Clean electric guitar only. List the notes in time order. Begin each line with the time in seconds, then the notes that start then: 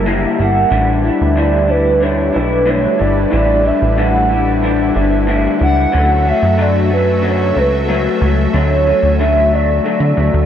0.06 D3 G3 A#3 E4
0.39 G3 A#3 E4
0.70 A2 D3 G3 D4 E4
1.04 G3 D4 E4
1.36 A2 D3 G3 D4 E4
1.67 G3 D4 E4
2.00 D3 G3 D4 E4
2.33 G3 D4 E4
2.65 A2 D3 G3 D4 E4
2.98 G3 D4 E4
3.30 A2 D3 G3 D4 E4
3.63 G3 D4 E4
3.97 A2 D3 G3 D4 E4
4.29 G3 D4 E4
4.62 D3 G3 D4 E4
4.94 G3 D4 E4
5.27 A2 D3 G3 D4 E4
5.59 G3 D4 E4
5.92 D3 F#3 A3 C#4
6.25 F#3 A3 C#4
6.58 D3 F#3 A3
6.90 F#3 A3 C#4
7.22 D3 F#3 A3 C#4
7.54 F#3 A3 C#4
7.88 F#3 A3 C#4
8.20 F#3 A3 C#4
8.53 D3 F#3 A3 C#4
8.86 F#3 A3 C#4
9.19 D3 F#3 A3 C#4
9.53 F#3 A3
9.84 D3 F#3 A3
10.17 F#3 A3